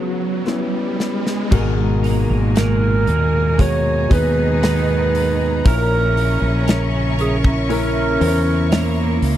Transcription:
Already playing: grand piano C#2 C#3 B3 C#4 F#4, clarinet G#4, riser
0.46 grand piano B3 C#4 E4, snare
1.00 snare
1.27 snare
1.51 fretless electric bass G#1, clean electric guitar G#2 D#3 G#3 D#4 A#4, grand piano G#2 B2 G#4 A#4, cello section A#2 A#3, string section G#5 A#5, kick, crash
2.03 clean electric guitar G#3 D#4 A#4, hi-hat pedal, open hi-hat
2.30 fretless electric bass G#1
2.55 clean electric guitar G#2 D#3 G#3 D#4 A#4, clarinet A#4, snare, hi-hat pedal, open hi-hat
3.06 fretless electric bass D#2, clean electric guitar G#3 D#4 A#4, hi-hat pedal, open hi-hat
3.58 grand piano B2 G#4 C#5, clean electric guitar G#3 D#4 A#4, clarinet C#5, kick, hi-hat pedal, open hi-hat
4.09 fretless electric bass D#2, cello section D#3 D#4, clean electric guitar G#3 B3 D#4, grand piano B3 G#4 B4, clarinet B4, kick, hi-hat pedal, open hi-hat
4.62 clean electric guitar G#2 D#3 G#3 B3 D#4, snare, hi-hat pedal, open hi-hat
5.15 hi-hat pedal, open hi-hat
5.64 fretless electric bass A#1, grand piano A#2 C#4 E4 A#4, cello section C#3 C#4, clean electric guitar A#3 C#4 E4 A#4, clarinet A#4, string section E5 C#6, kick, hi-hat pedal, open hi-hat
6.16 clean electric guitar C#4 E4 A#4, hi-hat pedal, open hi-hat
6.42 fretless electric bass A#1
6.67 clean electric guitar A#3 C#4 E4 A#4, snare, hi-hat pedal, open hi-hat
7.18 clean electric guitar C#4 E4 A#4, clarinet G#4, hi-hat pedal, open hi-hat
7.44 kick
7.69 clean electric guitar A#3 C#4 E4 A#4, grand piano C#4 E4 A#4, clarinet A#4, hi-hat pedal, open hi-hat
8.20 fretless electric bass E2, grand piano C#4 E4 C5, clean electric guitar C#4 E4 A#4, hi-hat pedal, open hi-hat
8.28 grand piano C#5
8.71 cello section A#2 A#3, clean electric guitar A#3 C#4 E4 A#4, snare, hi-hat pedal, open hi-hat
9.22 fretless electric bass C#2, hi-hat pedal, open hi-hat

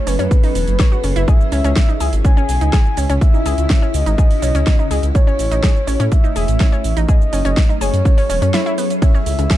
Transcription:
Already playing: ambient pad F#3 C#4 G#4 A4
0.07 detuned saw bass F#1, synth arpeggio sound C#4, soft synth lead B4, open hi-hat, shaker
0.19 detuned saw bass F#2, synth arpeggio sound C#4, closed hi-hat, shaker
0.31 kick, closed hi-hat, shaker
0.43 synth arpeggio sound D#4, open hi-hat, shaker
0.55 detuned saw bass E1, open hi-hat, shaker
0.68 detuned saw bass F#1, closed hi-hat, shaker
0.79 synth arpeggio sound C#5, kick, snare, closed hi-hat, shaker
0.92 synth arpeggio sound F#4, shaker
1.04 detuned saw bass F#1, synth arpeggio sound C#4, open hi-hat, shaker
1.16 detuned saw bass F#1, synth arpeggio sound E4, closed hi-hat, shaker
1.28 ambient pad C#3 E4, synth arpeggio sound G#4, soft synth lead E5, kick, closed hi-hat, shaker
1.41 shaker
1.52 detuned saw bass C#2, synth arpeggio sound C#4, open hi-hat, shaker
1.64 detuned saw bass C#2, synth arpeggio sound C#4, closed hi-hat, shaker
1.76 kick, snare, closed hi-hat, shaker
1.89 synth arpeggio sound D#4, shaker
2.00 detuned saw bass C#2, synth arpeggio sound G#4, open hi-hat, shaker
2.13 detuned saw bass G#1, closed hi-hat, shaker
2.25 synth arpeggio sound C#4, soft synth lead G#5, kick, closed hi-hat, shaker
2.37 synth arpeggio sound C#4, shaker
2.49 detuned saw bass B1, open hi-hat, shaker
2.61 detuned saw bass C#2, synth arpeggio sound D#4, closed hi-hat, shaker
2.73 synth arpeggio sound G#4, kick, snare, closed hi-hat, shaker
2.86 shaker
2.97 detuned saw bass C#2, synth arpeggio sound C#4, open hi-hat, shaker
3.10 detuned saw bass C#2, synth arpeggio sound C#4, closed hi-hat, shaker
3.21 ambient pad F#4, soft synth lead E5, kick, closed hi-hat, shaker
3.34 synth arpeggio sound D#4, shaker
3.46 detuned saw bass C#2, synth arpeggio sound G#4, open hi-hat, shaker
3.58 detuned saw bass C#2, closed hi-hat, shaker
3.70 synth arpeggio sound C#4, kick, snare, closed hi-hat, shaker
3.82 synth arpeggio sound C#4, shaker
3.94 detuned saw bass C#2, soft synth lead D#5, open hi-hat, shaker
4.06 detuned saw bass G#1, synth arpeggio sound D#4, closed hi-hat, shaker
4.18 synth arpeggio sound G#4, kick, closed hi-hat, shaker
4.31 open hi-hat, shaker
4.42 detuned saw bass B1, synth arpeggio sound C#4, open hi-hat, shaker
4.55 detuned saw bass C#2, synth arpeggio sound C#4, closed hi-hat, shaker
4.67 kick, snare, closed hi-hat, shaker
4.79 synth arpeggio sound D#4, shaker
4.91 detuned saw bass C#2, synth arpeggio sound G#4, open hi-hat, shaker
5.03 detuned saw bass C#2, closed hi-hat, shaker
5.15 ambient pad A3 C#4, synth arpeggio sound C#4, soft synth lead C#5, kick, closed hi-hat, shaker
5.27 synth arpeggio sound C#4, shaker
5.39 detuned saw bass A1, open hi-hat, shaker
5.51 detuned saw bass A1, synth arpeggio sound D#4, closed hi-hat, shaker
5.63 synth arpeggio sound G#4, kick, snare, closed hi-hat, shaker
5.76 shaker
5.87 detuned saw bass A1, synth arpeggio sound C#4, open hi-hat, shaker
6.00 detuned saw bass A2, synth arpeggio sound C#4, closed hi-hat, shaker
6.12 soft synth lead E5, kick, closed hi-hat, shaker
6.24 synth arpeggio sound D#4, shaker
6.36 detuned saw bass E1, synth arpeggio sound G#4, open hi-hat, shaker
6.48 detuned saw bass A1, closed hi-hat, shaker
6.60 synth arpeggio sound C#4, kick, snare, closed hi-hat, shaker
6.72 synth arpeggio sound C#4, shaker
6.84 detuned saw bass A1, open hi-hat, shaker
6.97 detuned saw bass A1, synth arpeggio sound D#4, closed hi-hat, shaker
7.09 ambient pad F#3 G#4 A4, synth arpeggio sound G#4, soft synth lead D#5, kick, closed hi-hat, shaker
7.21 shaker
7.33 detuned saw bass F#1, synth arpeggio sound C#4, open hi-hat, shaker
7.45 detuned saw bass F#1, synth arpeggio sound C#4, closed hi-hat, shaker
7.57 kick, snare, closed hi-hat, shaker
7.69 synth arpeggio sound D#4, shaker
7.81 detuned saw bass F#1, synth arpeggio sound G#4, soft synth lead C#5, open hi-hat, shaker
7.94 detuned saw bass F#2, closed hi-hat, shaker
8.05 synth arpeggio sound C#4, kick, closed hi-hat, shaker
8.18 synth arpeggio sound C#4, open hi-hat, shaker
8.30 detuned saw bass E1, synth arpeggio sound C#4, open hi-hat, shaker
8.42 detuned saw bass F#2, synth arpeggio sound C#4, closed hi-hat, shaker
8.54 synth arpeggio sound E4, snare, closed hi-hat, shaker
8.66 synth arpeggio sound E4, shaker
8.78 synth arpeggio sound B3, open hi-hat, shaker
8.90 closed hi-hat, shaker
9.02 ambient pad C#3 E4, synth arpeggio sound C#4, soft synth lead E5, kick, closed hi-hat, ride, shaker
9.14 synth arpeggio sound C#4, shaker
9.26 detuned saw bass C#2, open hi-hat, shaker
9.39 detuned saw bass C#2, synth arpeggio sound C#3, closed hi-hat, shaker
9.50 synth arpeggio sound G#4, kick, snare, closed hi-hat, ride, shaker

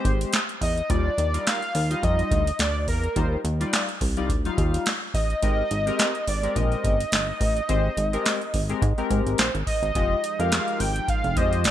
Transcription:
Already playing: analog polysynth G#3 C4 G4
0.00 analog polysynth C5
0.05 analog synth bass G#1, kick, closed hi-hat
0.21 closed hi-hat
0.33 snare, clap, closed hi-hat
0.49 closed hi-hat
0.61 analog synth bass E2, analog synth lead D#5, kick, open hi-hat
0.78 closed hi-hat
0.89 analog synth bass D#2, analog polysynth G3 D#4 F4 D5, analog synth lead D5, kick, closed hi-hat
1.18 analog synth bass D#2, closed hi-hat
1.33 analog polysynth G3 D#4 F4 A#4, closed hi-hat
1.47 analog synth lead F5, snare, clap, closed hi-hat
1.62 closed hi-hat
1.75 analog synth bass D#2, open hi-hat
1.90 analog polysynth G3 D#4 F4 D#5, closed hi-hat
2.03 analog synth bass F2, analog synth lead D#5, kick, closed hi-hat
2.19 closed hi-hat
2.31 analog synth bass D2, kick, closed hi-hat
2.47 closed hi-hat
2.59 analog synth bass D2, analog synth lead D5, snare, clap, closed hi-hat
2.88 analog synth bass E2, analog synth lead A#4, kick, open hi-hat
3.04 closed hi-hat
3.16 analog synth bass D#2, analog polysynth G3 D#4 F4 C5, kick, closed hi-hat
3.44 analog synth bass D#2, closed hi-hat
3.60 analog polysynth G3 D#4 F4 D5, closed hi-hat
3.73 snare, clap, closed hi-hat
3.89 closed hi-hat
4.01 analog synth bass C2, kick, open hi-hat
4.17 analog polysynth G3 D#4 F4 D5, closed hi-hat
4.29 analog synth bass D2, kick, closed hi-hat
4.45 analog polysynth F#3 D#4 F4 F5, closed hi-hat
4.52 analog polysynth G3
4.58 analog synth bass D#2, kick, closed hi-hat
4.74 closed hi-hat
4.86 snare, clap, closed hi-hat
5.14 analog synth bass A1, analog synth lead D#5, kick, open hi-hat
5.30 closed hi-hat
5.42 analog synth bass G#1, analog polysynth G#3 C4 G4 A#4, kick, closed hi-hat
5.71 analog synth bass G#1, closed hi-hat
5.86 analog polysynth G#3 C4 G4 A#4, closed hi-hat
5.99 snare, clap, closed hi-hat
6.15 closed hi-hat
6.28 analog synth bass G#1, analog synth lead D5, open hi-hat
6.43 analog polysynth G#3 C4 G4 A#4, closed hi-hat
6.56 analog synth bass A#1, analog synth lead D#5, kick, closed hi-hat
6.72 closed hi-hat
6.84 analog synth bass G1, kick, closed hi-hat
7.00 closed hi-hat
7.12 analog synth bass G1, snare, clap, closed hi-hat
7.41 analog synth bass A1, kick, open hi-hat
7.57 closed hi-hat
7.69 analog synth bass G#1, analog polysynth G#3 C4 G4 C5, kick, closed hi-hat
7.97 analog synth bass G#1, closed hi-hat
8.13 analog polysynth G#3 C4 G4 A#4, closed hi-hat
8.26 snare, clap, closed hi-hat
8.42 closed hi-hat
8.54 analog synth bass G#1, kick, open hi-hat
8.69 analog polysynth G#3 C4 G4 A#4, closed hi-hat
8.82 analog synth bass G#2, kick, closed hi-hat
8.98 analog polysynth G#3 C4 G4 A#4, closed hi-hat
9.10 analog synth bass G#2, kick, closed hi-hat
9.26 analog synth bass G#1, closed hi-hat
9.38 analog synth bass A#1, analog synth lead C5, snare, clap, closed hi-hat
9.55 analog synth bass G#1, closed hi-hat
9.67 analog synth lead D#5, kick, open hi-hat
9.83 analog synth bass G#1, closed hi-hat
9.95 analog synth bass F1, analog synth pad F3 G#3 D#4 G5, analog polysynth G#3 F4 G4 D#5, kick, closed hi-hat
10.24 closed hi-hat
10.39 analog synth bass F2, analog polysynth G#3 F4 G4 A#4, analog synth lead F5, closed hi-hat
10.52 snare, clap, closed hi-hat
10.68 closed hi-hat
10.80 analog synth bass G#1, analog synth lead G5, open hi-hat
10.96 closed hi-hat
11.08 analog synth lead F5, kick, closed hi-hat
11.24 analog synth bass F1, closed hi-hat
11.37 analog synth bass F2, analog polysynth G#3 F4 G4 C5, analog synth lead D#5, kick, closed hi-hat
11.53 closed hi-hat
11.64 analog synth bass G1, analog synth lead D5, snare, clap, closed hi-hat

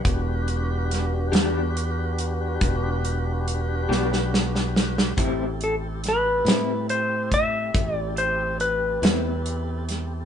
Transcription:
0.04 fingered electric bass E1, tonewheel organ D4 F#4 G4 B4, kick, closed hi-hat
0.48 closed hi-hat
0.91 snare, closed hi-hat
1.32 fingered electric bass E2, clean electric guitar E3 B3 D4 G4, snare, closed hi-hat
1.77 closed hi-hat
2.19 closed hi-hat
2.61 fingered electric bass E1, kick, closed hi-hat
3.05 closed hi-hat
3.48 closed hi-hat
3.89 fingered electric bass B1, clean electric guitar E3 B3 D4 G4, snare
4.13 snare
4.34 snare
4.55 snare
4.76 snare
4.98 snare
5.17 fingered electric bass A1, clean electric guitar A2 G3 C4 E4, tonewheel organ C4 E4 G4 A4, kick, closed hi-hat
5.61 electric slide guitar A4, closed hi-hat
6.04 snare, closed hi-hat
6.09 electric slide guitar B4
6.45 fingered electric bass A2, clean electric guitar A2 G3 C4 E4, snare, closed hi-hat
6.89 electric slide guitar C5, closed hi-hat
7.32 electric slide guitar E5, kick, closed hi-hat
7.74 fingered electric bass A1, kick, closed hi-hat
7.96 electric slide guitar D5
8.17 electric slide guitar C5, closed hi-hat
8.60 electric slide guitar B4, closed hi-hat
9.02 fingered electric bass E2, clean electric guitar A2 G3 C4 E4, snare, closed hi-hat
9.46 closed hi-hat
9.89 snare, closed hi-hat

